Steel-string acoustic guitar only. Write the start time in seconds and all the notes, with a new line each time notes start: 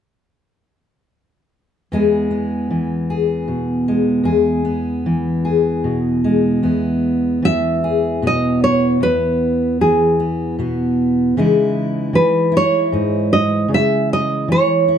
1.92 E2 E3 G#3 B3 G#4
2.31 B3
2.70 E3
3.10 G#4
3.48 B2
3.88 G#3
4.24 E2 G#4
4.65 B3
5.06 E3
5.45 G#4
5.84 B2
6.24 G#3
6.63 E2 B3
7.42 E3
7.84 G#4
8.22 B2 B3
9.00 E2 B3
9.81 E3
10.20 B3
10.59 B2 B3
11.37 C#3 E3 G#3 D#4 E4
12.13 E3
12.52 E4
12.92 G#2 D#4
13.68 C#3
14.48 E3
14.88 E4